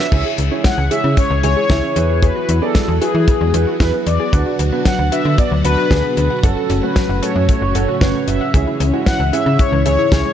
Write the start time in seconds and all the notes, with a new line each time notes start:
Already playing: E5
0.12 C#2 C#3 E3 G#3 E4 G#4 C#5 G#5, kick, crash
0.25 G#4
0.38 C#2 E4, closed hi-hat
0.51 C#4 E4 G#4 C#5
0.64 G#3 F#5, kick, snare, closed hi-hat
0.78 C#2 G#5
0.91 E4 G#4 C#5 E5, closed hi-hat
1.04 C#3 E4
1.17 C#4 C#5, kick, closed hi-hat
1.30 C#2 G#3
1.43 C#2 E4 G#4 C#5 G#5, closed hi-hat
1.57 G#4
1.70 C#2 E4 G#4 E5, kick, snare, closed hi-hat
1.83 C#4
1.96 E2 F#3 B3 E4 F#4 G#4 B4, closed hi-hat
2.09 G#4
2.22 G#4 B4, kick, closed hi-hat
2.36 F#4
2.49 E2 E4, closed hi-hat
2.62 B3 E4 G#4 A4 D5
2.75 G#3, kick, snare, closed hi-hat
2.88 E2 G#4
3.01 E4 F#4 G#4 B4, closed hi-hat
3.15 E3 E4
3.28 B3, kick, closed hi-hat
3.41 E2 G#3
3.54 E2 E4 G#4 B4, closed hi-hat
3.67 F#4
3.80 E2 E4 G#4 B4, kick, snare, closed hi-hat
3.94 B3
4.07 E2 D5, closed hi-hat
4.20 G#4
4.33 D2 B2 D3 D4 F#4 B4 F#5, kick, closed hi-hat
4.46 F#4
4.59 D2 D4, closed hi-hat
4.72 B3 D4 F#4 B4
4.85 F#3 F#5, kick, snare, closed hi-hat
4.99 D2 F#5
5.12 D4 F#4 B4 E5, closed hi-hat
5.25 D3 D4
5.38 B3 D5, kick, closed hi-hat
5.51 D2 F#3
5.65 D2 D4 F#4 B4 F#5, closed hi-hat
5.78 F#4
5.91 D2 D4 F#4 G#4, kick, snare, closed hi-hat
6.04 B3
6.17 D2, closed hi-hat
6.30 F#5
6.43 F#1 A2 C#3 C#4 F#4 A4 F#5, kick, closed hi-hat
6.57 F#4
6.70 F#1 C#4, closed hi-hat
6.83 A3 C#4 F#4 B4
6.96 F#3, kick, snare, closed hi-hat
7.09 F#1 F#5
7.22 C#4 F#4 A4 C#5, closed hi-hat
7.36 F#2 C#4
7.49 A3, kick, closed hi-hat
7.62 F#1 F#3
7.75 F#1 C#4 F#4 A4 F#5, closed hi-hat
7.88 F#4
8.01 F#1 C#4 F#4 B4 C#5, kick, snare, closed hi-hat
8.15 A3
8.28 F#1 E5, closed hi-hat
8.41 F#5
8.54 C#2 G#2 E3 C#4 E4 G#4 E5, kick, closed hi-hat
8.67 E4
8.80 C#2 C#4, closed hi-hat
8.94 G#3 C#4 E4 F#4
9.06 E3 F#5, kick, snare, closed hi-hat
9.20 C#2 E5
9.33 C#4 E4 G#4 E5, closed hi-hat
9.46 C#3 C#4
9.59 G#3 C#5, kick, closed hi-hat
9.72 C#2 E3
9.86 C#2 C#4 E4 G#4 C#5 E5, closed hi-hat
9.99 E4
10.12 C#2 C#4 E4 G#4, kick, snare, closed hi-hat
10.25 G#3